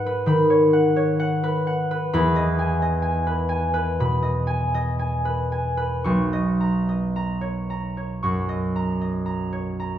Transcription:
Already playing: G#2 F#3 D#4 A#4 C#5 D#5 F#5 A#5 B5
0.06 B4
0.26 D#3 B5
0.50 C#5
0.73 F#5
0.96 C#5
1.20 F#5
1.44 B4
1.67 F#5
1.91 B4
2.13 E2 B5
2.36 D#5
2.59 G#5
2.82 D#5
3.02 G#5
3.27 B4
3.49 G#5
3.74 B4
4.00 B2 B5
4.23 D#5
4.47 G#5
4.74 D#5
4.99 G#5
5.25 B4
5.52 G#5
5.77 B4
6.04 B1 C#6
6.33 D#5
6.61 A#5
6.89 D#5
7.16 A#5
7.41 C#5
7.70 A#5
7.97 C#5
8.23 F#2 C#6
8.49 D#5
8.76 A#5
9.01 D#5
9.26 A#5
9.53 C#5
9.80 A#5

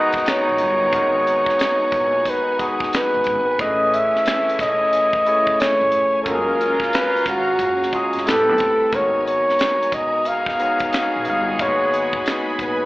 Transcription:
Already playing: D#3 G#3 B3 D#4 F#4 A#4 B4 D#5 F#5 G#5 A#5
0.12 kick, closed hi-hat
0.17 snare
0.26 C#5, finger snap, snare, closed hi-hat
0.49 A#1
0.58 G1, closed hi-hat
0.93 G#1 G#3 B3 D#4 F#4 A#4, kick, closed hi-hat
1.27 closed hi-hat
1.46 muted upright bass stroke, kick, snare
1.59 finger snap, snare, closed hi-hat
1.81 muted upright bass stroke
1.92 A#1, kick, closed hi-hat
2.25 B4, kick, closed hi-hat
2.59 G#3 B3 D#4 F#4 G#4, kick, closed hi-hat
2.80 kick, snare
2.93 B4, finger snap, snare, closed hi-hat
3.14 G#1
3.24 G#1, kick, closed hi-hat
3.58 A1 E3 A3 C#4 E4 G#4 B4 C#5 D#5, kick, closed hi-hat
3.94 E5, closed hi-hat
4.15 muted upright bass stroke, snare
4.26 finger snap, snare, closed hi-hat
4.48 muted upright bass stroke, closed hi-hat
4.59 B1 D#5, kick, snare, closed hi-hat
4.93 closed hi-hat
5.13 kick
5.26 A3 C#4 E4 G#4 C#5, closed hi-hat
5.47 kick
5.60 C#5, finger snap, snare, closed hi-hat
5.81 A1
5.92 F1, closed hi-hat
6.23 F#1 G#3 C#4 F4 A4 C#5 F5 A#5, kick, closed hi-hat
6.27 F4 F#4 A4 A#4
6.35 G#4
6.61 closed hi-hat
6.80 muted upright bass stroke, kick, snare
6.93 B4, finger snap, snare, closed hi-hat
7.15 muted upright bass stroke, closed hi-hat
7.26 G#1 F#4, kick, closed hi-hat
7.59 F#1, kick, closed hi-hat
7.83 snare
7.92 G#3 C#4 F4 F#4 G#4, kick, closed hi-hat
8.13 F1, closed hi-hat
8.17 snare
8.24 A1 G3 A3 B3 C4 E4 G4 A4 G5 B5, closed hi-hat
8.29 B4, finger snap, snare
8.33 C4
8.49 B1
8.58 G1, kick, closed hi-hat
8.92 G#1 G#3 A#3 B3 D#4 F#4 A#4 C#5 G#5 A#5, kick, closed hi-hat
8.99 B3
9.27 C#5, closed hi-hat
9.49 muted upright bass stroke, snare
9.59 finger snap, snare, closed hi-hat
9.83 muted upright bass stroke, closed hi-hat
9.92 B1 D#5, kick, closed hi-hat
10.25 G#3 B3 D#4 G#4 F5, closed hi-hat
10.46 kick, snare
10.59 G#3 B3 D#4 F#4 C#5, closed hi-hat
10.79 kick, closed hi-hat
10.93 finger snap, snare, closed hi-hat
11.16 A#1
11.25 G1 F5, closed hi-hat
11.59 G#1 G#3 A#3 D#4 F#4 C#5 B5, kick, closed hi-hat
11.67 B3
11.94 closed hi-hat
12.13 muted upright bass stroke, kick
12.26 finger snap, snare, closed hi-hat
12.49 muted upright bass stroke
12.59 A#1 B4, kick, closed hi-hat

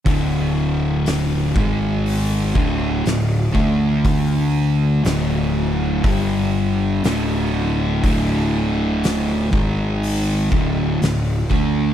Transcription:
0.06 D1 D2 A2 D3, kick, open hi-hat
1.06 snare, open hi-hat
1.54 G#1 G#2 D#3 G#3, kick
2.06 open hi-hat
2.54 D1 D2 A2 D3, kick
3.04 D1 D2 A2, snare, open hi-hat
3.53 D2 D3 A3 D4, kick
4.05 kick, open hi-hat
5.04 D1 D2 A2 D3, snare, open hi-hat
6.03 G1 G2 D3 G3, kick, open hi-hat
7.04 D1 D2 A2 D3, snare, open hi-hat
8.03 D1 D2 A2 D3, kick, open hi-hat
9.03 snare, open hi-hat
9.52 G#1 G#2 D#3 G#3, kick
10.03 open hi-hat
10.51 D1 D2 A2 D3, kick
11.01 D1 D2 A2, snare, open hi-hat
11.49 D2 D3 A3 D4, kick

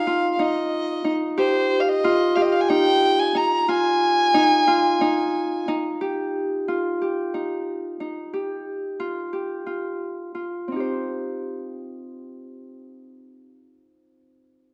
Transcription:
Already playing: D#4 F5
0.07 F4
0.32 F5
0.39 D#4 D#5
1.04 D#4
1.38 G4 C5
1.80 F5
1.89 D#5
2.04 F4
2.35 G4 F5
2.42 D#5
2.52 F5
2.61 G#5
2.69 D#4 G5
3.19 G#5
3.35 D#4 A#5
3.68 F4 G#5
4.34 D#4
4.67 F4
5.01 D#4
5.68 D#4
6.01 G4
6.68 F4
7.02 G4
7.34 D#4
8.00 D#4
8.33 G4
9.00 F4
9.33 G4
9.66 F4
10.35 F4
10.68 C4
10.72 D#4
10.76 G4
10.80 C5

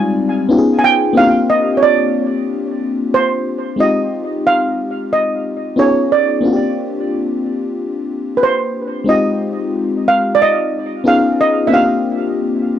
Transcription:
Already playing: G3 G#3 C4 D#4 F4 G4 D5 G#5
0.49 B3 C#4 D#4 F4 G4
0.58 G#4
0.79 G#5
0.84 G5
1.13 A#3 C4 D4
1.17 E4 G4 F5
1.24 F4
1.50 D#5
1.77 C#5
1.83 D5
3.14 C5
3.76 G#3 C4 D#4
3.80 F4 G4 D#5
4.47 F5
5.13 D#5
5.76 B3 C#4 D#4 F4 G#4 C#5
6.12 D5
6.41 A#3 C4 D4
6.45 F4 F#4
6.53 G4
8.37 B4
8.43 C5
9.04 G#3 C4 D#4
9.09 F4 G4 D#5
10.08 F5
10.35 D5
10.42 D#5
11.04 B3 C#4 D#4 F4 G#4 F5
11.41 D#5
11.67 A#3 C4 D4 E5
11.72 F4 G4 F5

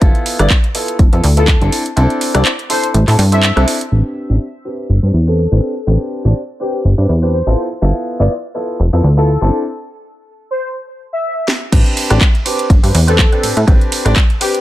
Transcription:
0.01 G1 B3 E4 F4 A4, kick, closed hi-hat
0.15 closed hi-hat
0.26 open hi-hat
0.39 G1 B3 E4 F4 D5, cross-stick, closed hi-hat
0.50 kick, clap, closed hi-hat
0.64 closed hi-hat
0.74 B3 E4 F4 A4, open hi-hat
0.88 closed hi-hat
0.99 F1, kick, closed hi-hat
1.12 F2 B3 E4 F4 A4, closed hi-hat
1.24 D2, open hi-hat
1.37 B3 E4 F4 A4, closed hi-hat
1.48 kick, clap, closed hi-hat
1.61 G1 C4 D4 E4 A4, closed hi-hat
1.72 open hi-hat
1.86 closed hi-hat
1.96 C2 C4 D4 E4 A4, closed hi-hat
2.10 closed hi-hat
2.21 open hi-hat
2.34 C2 C4 D4 E4 D5, cross-stick, closed hi-hat
2.45 clap, closed hi-hat
2.59 closed hi-hat
2.69 C4 D4 E4 A4 C5, open hi-hat
2.83 closed hi-hat
2.94 A1, closed hi-hat
3.07 A2 C4 D4 E4 A4, clap, open hi-hat
3.19 G2, open hi-hat
3.32 C4 D4 E4 A4 E5, closed hi-hat
3.43 clap, closed hi-hat
3.56 C2 C4 D4 E4 A4, cross-stick, closed hi-hat
3.68 open hi-hat
3.81 closed hi-hat
3.91 A1 C4 D4 G4 B4
4.29 A1 C4 D4 G4 D5
4.65 C4 D4 G4 B4
4.89 G1
5.02 G2 C4 D4 G4 B4
5.14 E2
5.27 C4 D4 G4 A4 B4
5.51 A1 C4 D4 G4 B4
5.87 A1 C4 D4 G4 B4
6.25 A1 C4 D4 G4 D5
6.60 C4 D4 G4 B4
6.85 G1
6.97 G2 C4 D4 G4 B4
7.09 E2
7.22 C4 D4 G4 B4
7.34 C5
7.46 A1 B3 E4 F4 A4
7.81 G1 B3 E4 F4 A4
8.19 G1 B3 E4 F4 D5
8.54 B3 E4 F4 A4
8.79 F1
8.93 F2 B3 E4 F4 A4
9.04 D2
9.17 B3 E4 F4 A4
9.41 G1 C4 D4 E4 A4
10.51 C5
11.13 E5
11.48 snare
11.72 A1 C4 D4 G4 B4, kick, closed hi-hat, crash
11.86 closed hi-hat
11.97 open hi-hat, ride
12.10 A1 C4 D4 G4 D5, cross-stick, closed hi-hat
12.21 kick, clap, closed hi-hat
12.35 closed hi-hat
12.45 C4 D4 G4 B4, open hi-hat, ride
12.59 closed hi-hat
12.70 G1, kick, closed hi-hat
12.83 G2 C4 D4 G4 B4, open hi-hat
12.94 E2, open hi-hat, ride
13.07 C4 D4 G4 A4 B4, closed hi-hat
13.19 kick, clap, closed hi-hat
13.32 C4 D4 G4 B4, closed hi-hat
13.43 A2, open hi-hat, ride
13.57 A2, closed hi-hat
13.67 A1 C4 D4 G4 B4, kick, closed hi-hat
13.81 closed hi-hat
13.92 open hi-hat, ride
14.05 A1 C4 D4 G4 D5, cross-stick, closed hi-hat
14.16 kick, clap, closed hi-hat
14.30 closed hi-hat
14.40 C4 D4 G4 B4, open hi-hat, ride
14.54 closed hi-hat

